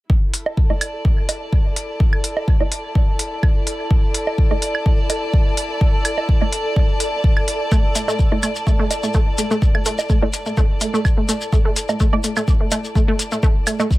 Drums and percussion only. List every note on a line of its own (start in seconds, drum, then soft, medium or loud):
0.10 kick loud
0.34 open hi-hat medium
0.46 low woodblock medium
0.57 kick loud
0.70 low woodblock medium
0.81 open hi-hat medium
0.81 claves medium
1.05 kick loud
1.29 open hi-hat medium
1.29 low woodblock medium
1.52 kick loud
1.76 open hi-hat medium
2.00 kick loud
2.13 claves medium
2.24 open hi-hat medium
2.37 low woodblock medium
2.48 kick loud
2.60 low woodblock medium
2.72 open hi-hat medium
2.95 kick loud
3.19 open hi-hat loud
3.43 kick loud
3.43 claves medium
3.67 open hi-hat medium
3.91 kick loud
4.14 open hi-hat loud
4.27 low woodblock medium
4.38 kick loud
4.51 low woodblock medium
4.62 open hi-hat medium
4.75 claves medium
4.86 kick loud
5.10 open hi-hat loud
5.10 low woodblock medium
5.33 kick loud
5.57 open hi-hat medium
5.81 kick loud
6.05 open hi-hat medium
6.05 claves medium
6.18 low woodblock medium
6.29 kick loud
6.41 low woodblock medium
6.53 open hi-hat medium
6.76 kick loud
7.00 open hi-hat loud
7.24 kick loud
7.37 claves medium
7.48 open hi-hat medium
7.72 kick loud
7.72 shekere soft
7.95 open hi-hat medium
7.95 shekere medium
8.08 low woodblock medium
8.08 shekere medium
8.19 kick loud
8.19 shekere soft
8.32 low woodblock medium
8.43 open hi-hat medium
8.43 claves medium
8.43 shekere medium
8.55 shekere medium
8.67 kick loud
8.67 shekere soft
8.91 open hi-hat medium
8.91 low woodblock medium
8.91 shekere medium
9.03 shekere medium
9.14 kick loud
9.14 shekere soft
9.38 open hi-hat medium
9.38 shekere medium
9.51 shekere medium
9.62 kick loud
9.62 shekere soft
9.75 claves medium
9.86 open hi-hat medium
9.86 shekere medium
9.98 low woodblock medium
9.98 shekere soft
10.10 kick loud
10.10 shekere soft
10.22 low woodblock medium
10.33 open hi-hat medium
10.33 shekere medium
10.46 shekere soft
10.57 kick loud
10.57 shekere soft
10.81 open hi-hat medium
10.81 shekere medium
10.95 shekere soft
11.05 kick loud
11.05 claves medium
11.05 shekere soft
11.29 open hi-hat medium
11.29 shekere medium
11.41 shekere soft
11.53 kick loud
11.53 shekere soft
11.76 open hi-hat medium
11.76 shekere medium
11.89 low woodblock medium
11.89 shekere soft
12.00 kick loud
12.00 shekere soft
12.13 low woodblock medium
12.24 open hi-hat medium
12.24 shekere medium
12.36 claves medium
12.36 shekere soft
12.48 kick loud
12.48 shekere soft
12.71 open hi-hat medium
12.71 low woodblock soft
12.71 shekere medium
12.84 shekere soft
12.95 kick loud
12.95 shekere soft
13.19 open hi-hat medium
13.19 shekere medium
13.32 shekere soft
13.43 kick loud
13.43 shekere soft
13.67 open hi-hat medium
13.67 claves medium
13.67 shekere medium
13.80 low woodblock medium
13.80 shekere soft
13.91 kick loud
13.91 shekere soft